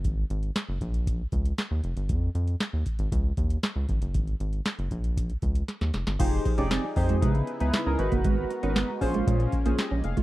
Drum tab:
CC |----------------|----------------|----------------|x---------------|
HH |x-xxx-xxx-xxx-xx|x-xxx-xxx-xxx-xx|xxxxxxxxxxxxxxxx|x-xxx-oxxxxxx-xx|
CP |----x-------x---|----x-------x---|----x-----------|----x-------x---|
SD |----o-------o---|----o-------o---|----o-------oooo|----o-------o---|
BD |o-----o-o-o-----|o-----o-o-o---o-|o-----o-o-o-----|o-o---o-o------o|

CC |----------------|
HH |x-xxx-oxxxxxx-xx|
CP |----x-------x---|
SD |----o-------o---|
BD |o-----o-o-o----o|